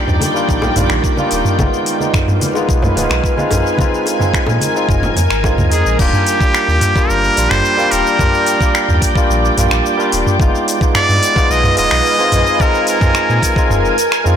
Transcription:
Already playing: ambient pad D#3 D5 G5, tine electric piano G3 A#3 D4 F4
0.08 sub bass D#2, mid tom, low conga, shaker
0.21 open hi-hat, high bongo, high conga, shaker
0.34 tine electric piano G3 A#3 D4 F4, shaker
0.49 sub bass A#1, kick, shaker
0.62 high bongo, low conga, shaker
0.75 sub bass A#1, tine electric piano G3 A#3 D4 F4, mid tom, open hi-hat, high conga, low conga, shaker
0.90 sub bass A#1, finger snap, shaker
1.04 kick, shaker
1.17 tine electric piano G3 A#3 D4 F4, high bongo, high conga, shaker
1.31 sub bass D#1, open hi-hat, shaker
1.45 mid tom, shaker
1.58 sub bass G1, tine electric piano G#3 B3 D#4 F4, ambient pad B4 F5 G#5, kick, high bongo, high conga, shaker
1.74 shaker
1.86 open hi-hat, shaker
2.00 tine electric piano G#3 B3 D#4 F4, high conga, shaker
2.14 finger snap, kick, mid tom, high bongo, shaker
2.28 sub bass G2, low conga, shaker
2.41 open hi-hat, high conga, shaker
2.54 tine electric piano G#3 B3 D#4 F4, high bongo, shaker
2.69 sub bass B1, kick, shaker
2.82 mid tom, low conga, shaker
2.96 sub bass D1, tine electric piano G#3 B3 D#4 F4, open hi-hat, high conga, low conga, shaker
3.10 sub bass B1, finger snap, high bongo, shaker
3.24 kick, shaker
3.37 tine electric piano G#3 C4 D#4 F4, high conga, shaker
3.51 sub bass A#1, ambient pad A#4, mid tom, open hi-hat, high bongo, shaker
3.67 shaker
3.78 tine electric piano G#3 C4 D#4 F4, kick, high conga, shaker
3.94 shaker
4.06 open hi-hat, high bongo, shaker
4.19 tine electric piano G#3 C4 D#4 F4, mid tom, high conga, shaker
4.34 finger snap, kick, shaker
4.46 sub bass A#2, high bongo, low conga, shaker
4.61 open hi-hat, high conga, shaker
4.74 tine electric piano G#3 C4 D#4 F4, shaker
4.89 sub bass F1, kick, mid tom, shaker
5.03 high bongo, low conga, shaker
5.16 sub bass F2, open hi-hat, high conga, low conga, shaker
5.30 sub bass G#1, finger snap, shaker
5.44 tine electric piano G#3 C4 D#4 F4, kick, high bongo, shaker
5.58 sub bass D#2, mid tom, high conga, shaker
5.71 sub bass F2, tine electric piano G#3 C4 D#4 G#4, muted trumpet G#4, open hi-hat, shaker
5.86 sub bass A#1, shaker
5.99 sub bass D#1, tine electric piano G3 A#3 D4 F4, muted trumpet G4, ambient pad D5 G5, kick, crash, shaker
6.13 mid tom, shaker
6.26 open hi-hat, shaker
6.40 tine electric piano G3 A#3 D4 F4, kick, shaker
6.54 finger snap, shaker
6.68 sub bass D#2, shaker
6.81 mid tom, open hi-hat, shaker
6.95 tine electric piano G3 A#3 D4 F4, kick, shaker
7.09 sub bass G1, muted trumpet A#4, shaker
7.24 shaker
7.36 sub bass A#1, tine electric piano G3 A#3 D4 F4, open hi-hat, shaker
7.50 sub bass G1, muted trumpet C5, finger snap, mid tom, shaker
7.65 shaker
7.77 tine electric piano G3 A#3 D4 F4, shaker
7.91 sub bass D#1, muted trumpet A#4, open hi-hat, shaker
8.07 shaker
8.19 tine electric piano G3 A#3 D4 F4, kick, mid tom, shaker
8.34 shaker
8.46 open hi-hat, shaker
8.60 tine electric piano G3 A#3 D4 F4, kick, shaker
8.75 finger snap, shaker
8.89 sub bass D#2, mid tom, shaker
9.02 kick, open hi-hat, shaker
9.15 tine electric piano G3 A#3 D4 F4, kick, shaker
9.30 sub bass A#1, shaker
9.45 shaker
9.57 sub bass A#1, tine electric piano G3 A#3 D4 F4, mid tom, open hi-hat, shaker
9.71 sub bass A#1, finger snap, shaker
9.86 shaker
9.97 tine electric piano G3 A#3 D4 F4, shaker
10.12 sub bass D#1, open hi-hat, shaker
10.27 mid tom, shaker
10.39 sub bass G1, tine electric piano G#3 B3 D#4 F4, ambient pad B4 F5 G#5, kick, shaker
10.55 shaker
10.68 open hi-hat, shaker
10.80 tine electric piano G#3 B3 D#4 F4, kick, shaker
10.95 muted trumpet D5, finger snap, mid tom, shaker
11.09 sub bass G2, shaker
11.23 open hi-hat, shaker
11.35 tine electric piano G#3 B3 D#4 F4, kick, shaker
11.50 sub bass B1, muted trumpet D#5, shaker
11.64 mid tom, shaker
11.76 sub bass D1, tine electric piano G#3 B3 D#4 F4, muted trumpet D#5, open hi-hat, shaker
11.91 sub bass B1, finger snap, shaker
12.06 shaker
12.18 tine electric piano G#3 C4 D#4 F4, shaker
12.32 sub bass A#1, ambient pad A#4, mid tom, open hi-hat, shaker
12.47 shaker
12.59 tine electric piano G#3 C4 D#4 F4, muted trumpet A#4, kick, shaker
12.75 shaker
12.87 muted trumpet A#4, open hi-hat, shaker
13.01 tine electric piano G#3 C4 D#4 F4, kick, mid tom, shaker
13.15 finger snap, shaker
13.30 sub bass A#2, shaker
13.42 kick, open hi-hat, shaker
13.56 tine electric piano G#3 C4 D#4 F4, kick, shaker
13.70 sub bass F1, mid tom, shaker
13.85 shaker
13.98 open hi-hat, shaker
14.12 finger snap, shaker
14.24 sub bass F2, tine electric piano G#3 C4 D#4 F4, shaker

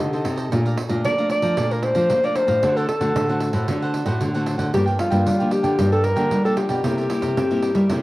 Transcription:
Already playing: alto saxophone G4, cavaquinho A4 C5 D#5
0.00 nylon-string guitar C3 D3, pandeiro
0.13 nylon-string guitar C4 D#4 A4, cavaquinho A4 C5 D#5, pandeiro
0.24 nylon-string guitar C3, cavaquinho F4 A4 C5 D#5, pandeiro
0.36 cavaquinho A4 C5 D#5, pandeiro
0.51 nylon-string guitar A#2 A3 D4 F4, cavaquinho A4 D5 F5 A#5, pandeiro
0.65 cavaquinho D5 F5 A#5, pandeiro
0.77 muted cavaquinho stroke, pandeiro
0.89 nylon-string guitar A#2 A3 D4 F4, cavaquinho D5 F5 A#5, pandeiro
1.04 nylon-string guitar F3 A#3, cavaquinho A4 D5 F5 A#5, alto saxophone D5, pandeiro
1.18 nylon-string guitar A3 D4 F4, cavaquinho D5 F5 A#5, pandeiro
1.30 alto saxophone D5, muted cavaquinho stroke, pandeiro
1.42 nylon-string guitar F3, cavaquinho D5 F5 A#5, pandeiro
1.57 nylon-string guitar A#2 A3 D4 F4, cavaquinho A4 D5 F5 A#5, pandeiro
1.71 alto saxophone A#4, cavaquinho D5 F5 A#5, pandeiro
1.83 alto saxophone C5, pandeiro
1.95 nylon-string guitar F3 A3 D4 F4, cavaquinho D5 F5 A#5, pandeiro
2.10 nylon-string guitar F3 A#3, pandeiro
2.24 nylon-string guitar A3 D4 F4, alto saxophone D5, cavaquinho D5 F5 A#5, pandeiro
2.35 cavaquinho A4 D5 F5 A#5, alto saxophone C5, pandeiro
2.47 nylon-string guitar A2, cavaquinho D5 F5 A#5, pandeiro
2.62 nylon-string guitar D3 A3 C4 F#4, cavaquinho D4 A4 C5 F#5, pandeiro
2.76 alto saxophone A4, cavaquinho A4 C5 F#5, pandeiro
2.88 alto saxophone A4, muted cavaquinho stroke, pandeiro
3.01 nylon-string guitar D3 A3 C4 F#4, cavaquinho A4 C5 F#5, pandeiro
3.15 nylon-string guitar A2 D3, cavaquinho D4 A4 C5 F#5, pandeiro
3.29 nylon-string guitar A3 C4 F#4, cavaquinho A4 C5 F#5, pandeiro
3.40 muted cavaquinho stroke, pandeiro
3.53 nylon-string guitar A2, cavaquinho A4 C5 F#5, pandeiro
3.68 nylon-string guitar D3 A3 C4 F#4, cavaquinho D4 A4 C5 F#5, pandeiro
3.82 cavaquinho A4 C5 F#5, pandeiro
3.94 pandeiro
4.06 nylon-string guitar A2 A3 C4 F#4, cavaquinho A4 C5 F#5, pandeiro
4.21 nylon-string guitar A2 D3, pandeiro
4.34 nylon-string guitar A3 C4 F#4, cavaquinho A4 C5 F#5, pandeiro
4.46 cavaquinho D4 A4 C5 F#5, pandeiro
4.58 nylon-string guitar D3, cavaquinho A4 C5 F#5, pandeiro
4.73 nylon-string guitar G2 F3 A#3 D4, cavaquinho F4 A#4 D5 G5, alto saxophone G4, pandeiro
4.86 cavaquinho A#4 D5 G5, pandeiro
4.98 alto saxophone F4, muted cavaquinho stroke, pandeiro
5.10 nylon-string guitar G2 F3 A#3 D4, cavaquinho A#4 D5 G5, pandeiro
5.26 nylon-string guitar D3 G3, cavaquinho F4 A#4 D5 G5, pandeiro
5.39 nylon-string guitar F3 A#3 D4, cavaquinho A#4 D5 G5, pandeiro
5.51 alto saxophone G4, muted cavaquinho stroke, pandeiro
5.63 nylon-string guitar D3, cavaquinho A#4 D5 G5, pandeiro
5.78 nylon-string guitar G2 F3 A#3 D4, cavaquinho F4 A#4 D5 G5, pandeiro
5.92 alto saxophone A4, cavaquinho A#4 D5 G5, pandeiro
6.04 alto saxophone A#4, pandeiro
6.16 nylon-string guitar D3 F3 A#3 D4, cavaquinho A#4 D5 G5, pandeiro
6.31 nylon-string guitar D3 G3, pandeiro
6.45 nylon-string guitar F3 A#3 D4, alto saxophone A4, cavaquinho A#4 D5 G5, pandeiro
6.56 cavaquinho F4 A#4 D5 G5, alto saxophone G4, pandeiro
6.69 nylon-string guitar B2, cavaquinho A#4 D5 G5, pandeiro
6.84 nylon-string guitar C3 G3 A#3 E4, cavaquinho E4 A#4 C5 E5, pandeiro
6.97 cavaquinho A#4 C5 E5, pandeiro
7.09 nylon-string guitar G3 A#3 E4, muted cavaquinho stroke, pandeiro
7.22 nylon-string guitar C3, cavaquinho A#4 C5 E5, pandeiro
7.37 nylon-string guitar G2 C4, cavaquinho E4 A#4 C5 E5, pandeiro
7.50 nylon-string guitar G3 A#3 E4, cavaquinho A#4 C5 E5, pandeiro
7.62 muted cavaquinho stroke, pandeiro
7.75 nylon-string guitar G3, cavaquinho A#4 C5 E5, pandeiro
7.89 nylon-string guitar C3 G3 A#3 E4, cavaquinho E4 A#4 C5 E5, pandeiro

